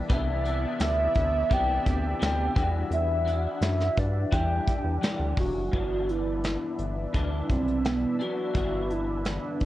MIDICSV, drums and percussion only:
0, 0, Header, 1, 2, 480
1, 0, Start_track
1, 0, Key_signature, 1, "major"
1, 0, Tempo, 704639
1, 63, Time_signature, 4, 2, 24, 8
1, 6575, End_track
2, 0, Start_track
2, 0, Title_t, "Drums"
2, 62, Note_on_c, 9, 42, 92
2, 65, Note_on_c, 9, 36, 116
2, 130, Note_off_c, 9, 42, 0
2, 133, Note_off_c, 9, 36, 0
2, 308, Note_on_c, 9, 42, 71
2, 376, Note_off_c, 9, 42, 0
2, 543, Note_on_c, 9, 42, 114
2, 550, Note_on_c, 9, 38, 114
2, 611, Note_off_c, 9, 42, 0
2, 618, Note_off_c, 9, 38, 0
2, 781, Note_on_c, 9, 42, 71
2, 788, Note_on_c, 9, 36, 90
2, 849, Note_off_c, 9, 42, 0
2, 856, Note_off_c, 9, 36, 0
2, 1025, Note_on_c, 9, 42, 85
2, 1026, Note_on_c, 9, 36, 101
2, 1094, Note_off_c, 9, 36, 0
2, 1094, Note_off_c, 9, 42, 0
2, 1266, Note_on_c, 9, 36, 93
2, 1266, Note_on_c, 9, 42, 81
2, 1334, Note_off_c, 9, 36, 0
2, 1334, Note_off_c, 9, 42, 0
2, 1509, Note_on_c, 9, 42, 93
2, 1515, Note_on_c, 9, 38, 111
2, 1577, Note_off_c, 9, 42, 0
2, 1583, Note_off_c, 9, 38, 0
2, 1746, Note_on_c, 9, 36, 111
2, 1756, Note_on_c, 9, 42, 68
2, 1814, Note_off_c, 9, 36, 0
2, 1824, Note_off_c, 9, 42, 0
2, 1986, Note_on_c, 9, 42, 91
2, 2054, Note_off_c, 9, 42, 0
2, 2231, Note_on_c, 9, 42, 72
2, 2299, Note_off_c, 9, 42, 0
2, 2464, Note_on_c, 9, 42, 114
2, 2470, Note_on_c, 9, 38, 117
2, 2532, Note_off_c, 9, 42, 0
2, 2538, Note_off_c, 9, 38, 0
2, 2590, Note_on_c, 9, 38, 37
2, 2658, Note_off_c, 9, 38, 0
2, 2703, Note_on_c, 9, 42, 71
2, 2708, Note_on_c, 9, 36, 89
2, 2772, Note_off_c, 9, 42, 0
2, 2776, Note_off_c, 9, 36, 0
2, 2944, Note_on_c, 9, 42, 91
2, 2946, Note_on_c, 9, 36, 100
2, 3012, Note_off_c, 9, 42, 0
2, 3014, Note_off_c, 9, 36, 0
2, 3186, Note_on_c, 9, 36, 90
2, 3186, Note_on_c, 9, 42, 74
2, 3254, Note_off_c, 9, 36, 0
2, 3255, Note_off_c, 9, 42, 0
2, 3428, Note_on_c, 9, 42, 92
2, 3434, Note_on_c, 9, 38, 122
2, 3496, Note_off_c, 9, 42, 0
2, 3502, Note_off_c, 9, 38, 0
2, 3659, Note_on_c, 9, 36, 100
2, 3671, Note_on_c, 9, 46, 50
2, 3728, Note_off_c, 9, 36, 0
2, 3739, Note_off_c, 9, 46, 0
2, 3903, Note_on_c, 9, 42, 86
2, 3904, Note_on_c, 9, 36, 108
2, 3971, Note_off_c, 9, 42, 0
2, 3972, Note_off_c, 9, 36, 0
2, 4147, Note_on_c, 9, 42, 65
2, 4215, Note_off_c, 9, 42, 0
2, 4384, Note_on_c, 9, 42, 110
2, 4390, Note_on_c, 9, 38, 107
2, 4452, Note_off_c, 9, 42, 0
2, 4458, Note_off_c, 9, 38, 0
2, 4622, Note_on_c, 9, 42, 61
2, 4690, Note_off_c, 9, 42, 0
2, 4863, Note_on_c, 9, 42, 83
2, 4866, Note_on_c, 9, 36, 88
2, 4931, Note_off_c, 9, 42, 0
2, 4934, Note_off_c, 9, 36, 0
2, 5106, Note_on_c, 9, 36, 81
2, 5106, Note_on_c, 9, 42, 73
2, 5174, Note_off_c, 9, 42, 0
2, 5175, Note_off_c, 9, 36, 0
2, 5231, Note_on_c, 9, 42, 47
2, 5299, Note_off_c, 9, 42, 0
2, 5347, Note_on_c, 9, 42, 90
2, 5353, Note_on_c, 9, 38, 110
2, 5416, Note_off_c, 9, 42, 0
2, 5421, Note_off_c, 9, 38, 0
2, 5592, Note_on_c, 9, 42, 62
2, 5660, Note_off_c, 9, 42, 0
2, 5823, Note_on_c, 9, 42, 86
2, 5825, Note_on_c, 9, 36, 105
2, 5891, Note_off_c, 9, 42, 0
2, 5894, Note_off_c, 9, 36, 0
2, 6068, Note_on_c, 9, 42, 64
2, 6136, Note_off_c, 9, 42, 0
2, 6304, Note_on_c, 9, 42, 102
2, 6311, Note_on_c, 9, 38, 107
2, 6372, Note_off_c, 9, 42, 0
2, 6379, Note_off_c, 9, 38, 0
2, 6543, Note_on_c, 9, 42, 62
2, 6549, Note_on_c, 9, 36, 83
2, 6575, Note_off_c, 9, 36, 0
2, 6575, Note_off_c, 9, 42, 0
2, 6575, End_track
0, 0, End_of_file